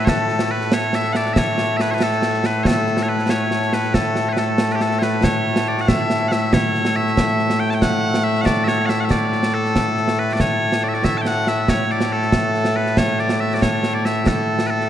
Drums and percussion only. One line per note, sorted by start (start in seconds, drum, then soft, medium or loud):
0.07 concert bass drum medium
0.07 snare loud
0.29 snare soft
0.39 snare medium
0.61 snare soft
0.72 snare loud
0.93 snare medium
1.04 snare soft
1.15 snare medium
1.25 snare soft
1.36 concert bass drum medium
1.36 snare loud
1.58 snare medium
1.80 snare medium
2.01 snare medium
2.12 snare soft
2.22 snare medium
2.34 snare soft
2.44 snare medium
2.65 concert bass drum medium
2.65 snare loud
2.87 snare soft
2.97 snare medium
3.19 snare soft
3.29 snare loud
3.51 snare medium
3.62 snare soft
3.73 snare medium
3.84 snare soft
3.94 concert bass drum medium
3.94 snare medium
4.16 snare medium
4.37 snare medium
4.58 snare loud
4.70 snare soft
4.81 snare medium
4.91 snare soft
5.02 snare medium
5.23 concert bass drum medium
5.23 snare loud
5.56 snare medium
5.78 snare soft
5.88 concert bass drum medium
5.88 snare loud
6.10 snare medium
6.32 snare medium
6.53 concert bass drum medium
6.53 snare loud
6.75 snare soft
6.85 snare medium
7.07 snare soft
7.17 concert bass drum medium
7.17 snare loud
7.39 snare soft
7.50 snare medium
7.71 snare soft
7.82 concert bass drum medium
7.82 snare medium
8.14 snare medium
8.36 snare soft
8.46 concert bass drum medium
8.46 snare medium
8.68 snare medium
8.89 snare medium
9.10 concert bass drum medium
9.10 snare medium
9.32 snare soft
9.43 snare medium
9.65 snare soft
9.76 concert bass drum medium
9.76 snare medium
9.97 snare soft
10.08 snare medium
10.29 snare soft
10.40 concert bass drum medium
10.40 snare medium
10.72 snare medium
10.94 snare soft
11.04 concert bass drum medium
11.04 snare medium
11.25 snare medium
11.47 snare medium
11.68 concert bass drum medium
11.68 snare loud
11.90 snare soft
12.01 snare medium
12.22 snare soft
12.32 concert bass drum medium
12.32 snare loud
12.54 snare soft
12.65 snare medium
12.86 snare soft
12.97 concert bass drum medium
12.97 snare loud
13.19 snare soft
13.29 snare medium
13.51 snare soft
13.62 concert bass drum medium
13.62 snare loud
13.83 snare medium
14.05 snare medium
14.26 concert bass drum medium
14.26 snare loud
14.59 snare medium
14.81 snare soft